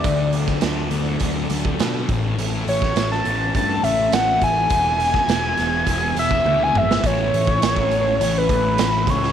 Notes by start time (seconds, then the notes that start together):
Already playing: D5
0.04 D2 D3 F#3 D4 A4, kick, closed hi-hat
0.33 F#3, closed hi-hat
0.48 kick, snare
0.61 D2 D4, snare, closed hi-hat
0.90 D2 A3, closed hi-hat
1.20 D2 F#3, kick, closed hi-hat
1.50 D2 A3, closed hi-hat
1.65 kick
1.79 B2 D4, snare, closed hi-hat
2.09 A1 A2 E3 C#4 E5, kick, closed hi-hat
2.38 A1 A2, closed hi-hat
2.67 A1 A3 C#5, closed hi-hat
2.82 kick, snare
2.96 A1 E4, snare, closed hi-hat
3.12 A5, snare
3.25 A1 C#4, closed hi-hat
3.55 G2 A3 A5, kick, closed hi-hat
3.83 A1 C#4 E5, closed hi-hat
4.12 A1 E4 F#5, snare, closed hi-hat
4.41 A1 A3 G#5, kick, closed hi-hat
4.70 E1 E3 B3 G#4, kick, closed hi-hat
4.98 G#3, closed hi-hat
5.14 kick, snare
5.27 E1 E4, snare, closed hi-hat
5.57 E1 B3, snare, closed hi-hat
5.87 E1 G#3, kick, closed hi-hat
6.15 E1 B3, closed hi-hat
6.19 E5
6.31 kick
6.44 D2 E4, high tom
6.63 G#5
6.74 G#1 G#3 E5, mid tom
6.91 snare
7.03 A1 A2 E3 A3 C#4 A4 C#5, kick, closed hi-hat
7.07 E5
7.33 A1, closed hi-hat
7.47 kick
7.62 A1, snare, closed hi-hat
7.76 kick
7.91 closed hi-hat
8.20 A1 C#5, closed hi-hat
8.38 B4
8.49 A1 B4, kick, closed hi-hat
8.78 A1, snare, closed hi-hat
9.07 C#2 C#5, kick, closed hi-hat
9.23 snare